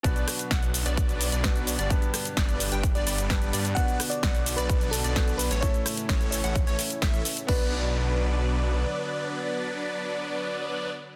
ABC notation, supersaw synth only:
X:1
M:4/4
L:1/16
Q:1/4=129
K:Bm
V:1 name="Supersaw synth"
[F,B,DBd]2 z2 [F,B,DBf] z2 [F,B,DBd]4 [F,B,DBd]4 [G,B,DBd]- | [G,B,DBd] z3 [G,B,DBd]3 [G,B,DBg] z [G,B,DBd] [G,B,DBd]4 [G,B,DBd] z | [F,B,DBd]2 z2 [F,B,DBf] z2 [F,B,DBd]4 [F,B,DBd]4 [E,A,CAc]- | [E,A,CAc] z3 [E,A,CAc]3 [E,A,CAf] z [E,A,CAc] z2 [E,A,CAe]2 z2 |
[F,B,DBd]16- | [F,B,DBd]16 |]